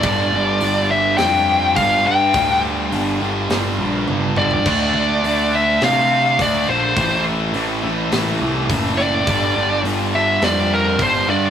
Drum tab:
CC |----------------|----------------|x---------------|----------------|
HH |o---o---o---o---|o---o---o-------|----o---o---o---|o---o---o---o---|
SD |--------o-------|--------o-------|--------o-------|--------o-----o-|
T1 |----------------|------------o---|----------------|----------------|
T2 |----------------|--------------o-|----------------|----------------|
FT |----------------|---------------o|----------------|----------------|
BD |o-----------o---|o---------------|o-----------o---|o-----------o---|

CC |----------------|
HH |o---o---o---o---|
SD |--------o-------|
T1 |----------------|
T2 |----------------|
FT |----------------|
BD |o-----------o---|